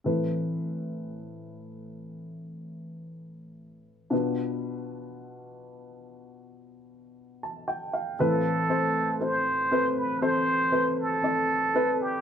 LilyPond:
<<
  \new Staff \with { instrumentName = "Muted trumpet" } { \time 4/4 \key a \minor \tempo 4 = 59 r1 | r1 | a'4 c''8. b'16 c''8. a'4 g'16 | }
  \new Staff \with { instrumentName = "Upright piano" } { \time 4/4 \key a \minor << { r1 | r2. r16 a''16 g''16 f''16~ | f''16 r2. r8. | } \\ { <c' a' b'>1 | <d' f' b'>1 | <c' a' b'>8 <c' a' c''>8 <c' a' c''>8 <c' a' b'>8 <c' a' c''>8 <c' a' b'>8 <c' a' d''>8 <c' a' b'>8 | } >> }
  \new Staff \with { instrumentName = "Upright piano" } { \clef bass \time 4/4 \key a \minor <a, e>1 | <b, b>1 | <a, e>4. r2 r8 | }
>>